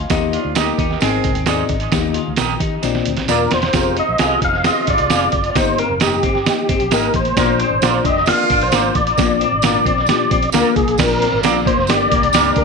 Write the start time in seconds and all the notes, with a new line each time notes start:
Already playing: C6
0.10 D#2 A#3 D#4 G4 D#5, kick, snare, closed hi-hat, tambourine
0.33 F3 D4 F4, closed hi-hat
0.45 D2
0.54 D#3 A#3 D#4 G4 A#4 D#5, snare, closed hi-hat, tambourine
0.78 D#2 D#4, kick, closed hi-hat
0.91 snare
0.99 G#1 G#2 D#3 C4 D#4 G#4 D#5, snare, closed hi-hat, tambourine
1.24 C2, kick, closed hi-hat
1.35 D#2, closed hi-hat
1.46 C4 D#4 G#4 C5 D5 D#5, snare, closed hi-hat, tambourine
1.69 G#1, kick, closed hi-hat
1.80 closed hi-hat
1.92 D#2 D#3 A#3 D#4 G4 D#5, kick, snare, closed hi-hat, tambourine
2.14 F4, closed hi-hat
2.28 D2
2.36 A#1 G4 A#4 D#5 G5, snare, closed hi-hat, tambourine
2.60 D#3 D#4 G4 D#5, kick, closed hi-hat
2.82 A#1 A#2 A#3 C4 D4 F4 D5, snare, closed hi-hat, tambourine
2.95 snare
3.05 D2, closed hi-hat
3.17 A#1, snare, closed hi-hat
3.28 D#1 A#3 D4 F4 A#4 D5, snare, closed hi-hat, tambourine
3.51 E1 F4 C5, snare, closed hi-hat
3.62 snare, closed hi-hat
3.73 F1 A#3 C4 F4 G4 G#4 A#4 C5 F5, kick, snare, closed hi-hat, tambourine
3.97 G#3 D#4 F4 C5 D#5, closed hi-hat
4.09 A#1
4.18 C2 A#3 C4 F4 G4 G#4 A#4 C5 F5 G#5, snare, closed hi-hat, tambourine
4.42 F1 F3 C4 D#4 G#4 F5, kick, closed hi-hat
4.54 snare
4.64 C3 G#3 C4 F4 G#4 D#5 F5, snare, closed hi-hat, tambourine
4.82 D#5
4.87 G#1 D#4 D5, kick, closed hi-hat
4.98 C2, closed hi-hat
5.10 F1 C4 F4 G#4 C5 F5, snare, closed hi-hat, tambourine
5.32 F#1, kick, closed hi-hat
5.44 closed hi-hat
5.51 D5
5.55 G1 G2 A#3 D#4 G4 C5 D#5, kick, snare, closed hi-hat, tambourine
5.78 C4 A#4, closed hi-hat
5.89 F1
6.00 A#3 D#4 G4 A#4 D#5, snare, closed hi-hat, tambourine
6.23 G1 C4, kick, closed hi-hat
6.35 snare
6.46 A#3 D#4 G4 D#5, snare, closed hi-hat, tambourine
6.69 G1 C4, kick, closed hi-hat
6.80 A#1, closed hi-hat
6.91 G#1 A#3 D#4 G4 A#4 D#5, snare, closed hi-hat, tambourine
7.14 A1 C5, kick, closed hi-hat
7.25 closed hi-hat
7.37 A#1 A#2 F3 A#3 D4 F4 A#4 D5, kick, snare, closed hi-hat, tambourine
7.59 C4 D4 G#4 C5, closed hi-hat
7.70 G#1
7.82 A#1 F3 A#3 D4 F4 A#4 D5, snare, closed hi-hat, tambourine
8.04 F1 G3 D4 D#4 G4 D#5, kick, closed hi-hat
8.17 snare
8.26 D3 A#3 D4 F4 D5 F5, snare, closed hi-hat, tambourine
8.50 G#1 D4, kick, closed hi-hat
8.61 A#1 C5, closed hi-hat
8.72 G#1 A#3 D4 F4 A#4 D5, snare, closed hi-hat, tambourine
8.95 A1 D5, kick, closed hi-hat
9.07 closed hi-hat
9.17 A#1 A#2 A#3 D4 F4 D5, kick, snare, closed hi-hat, tambourine
9.40 C4, closed hi-hat
9.52 G#1
9.62 A#3 D4 F4 A#4 D5, snare, closed hi-hat, tambourine
9.86 A#1 C4, kick, closed hi-hat
9.98 snare
10.06 A#2 A#3 D4 F4 G4, snare, closed hi-hat, tambourine
10.31 A#1 C4, kick, closed hi-hat
10.43 closed hi-hat
10.52 D2 A#3 D4 F4 A#4 D5, snare, closed hi-hat, tambourine
10.76 C2 G#4, kick, closed hi-hat
10.87 A#1, closed hi-hat
10.98 A#1 A#2 A#3 D4 F4 A#4 D5, kick, snare, closed hi-hat, crash, tambourine
11.20 F3 C4 D4 A#4, closed hi-hat
11.32 G#1
11.43 A#1 A#3 D4 F4 A#4 D5, snare, closed hi-hat, tambourine
11.65 A#3 C5, kick, closed hi-hat
11.77 F1, snare
11.87 G1 G2 D3 A#3 D4 G4 D5, snare, closed hi-hat, tambourine
12.10 A#1 G3 A#3 D4 A#4, kick, closed hi-hat
12.22 C2, closed hi-hat
12.33 C#2 G3 A#3 D4 G4 A#4 D5, snare, closed hi-hat, tambourine
12.55 D2 D4 A#4, kick, closed hi-hat